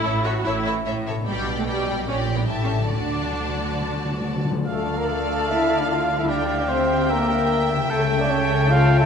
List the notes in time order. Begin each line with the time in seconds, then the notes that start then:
Already playing: A2 C#4 E4 A4
0.03 A1 A2 A4 C#5 E5
0.24 F#4 A4 C#5 E5
0.45 A1 A2 E4 A4 C#5 E5
0.65 A4 C#5 E5
0.86 A1 A2 A4 C#5 E5
1.06 B2 A4 C#5 E5
1.13 B3
1.18 D4
1.22 G4
1.26 B1 B2 G3 G4 D5 G5
1.57 A3
1.65 G3 G4 D5 G5
1.91 A#2
1.95 G3
1.99 D4
2.04 G4
2.08 A#1 A#2 C#4 G4 D5 G5
2.33 A2 B3
2.37 G3
2.41 E4
2.46 A1 G4 A4 E5 A5
2.50 A2
2.64 C#4
2.75 D3
2.80 F#3
2.84 D4
2.89 D2 D3 D4 F#4 A4 D5
2.93 D3 A5
3.01 D3
3.08 D3
3.17 D3
3.25 D3
3.32 D3
3.40 D3
3.49 D3
3.56 D3
3.64 D3
3.73 D3
3.80 D3
3.88 D3
3.96 D3
4.04 D3
4.12 D3
4.20 D3
4.28 D3
4.36 D3
4.45 D3
4.50 D3
4.54 F3
4.59 D4
4.63 A4 F5
4.67 D2 D3 A3 A4 D5 F5 A5
4.97 A#3 A#4
5.08 A3 A4
5.49 E4 E5
5.79 D4 D5
5.88 F4 F5
6.13 D3
6.17 G3 E4 E5
6.22 E4
6.26 D4 G4 D5
6.30 E5 G5
6.59 D4 D5
6.68 C4 C5
7.10 A#3 A#4 E5
7.72 C#3
7.77 A3
7.82 E4
7.86 A3 G4 A4
7.90 C#2 C#3 A4 G5 A5
8.20 D4 D5
8.30 C#4 C#5
8.69 F4 F5
9.00 E4 E5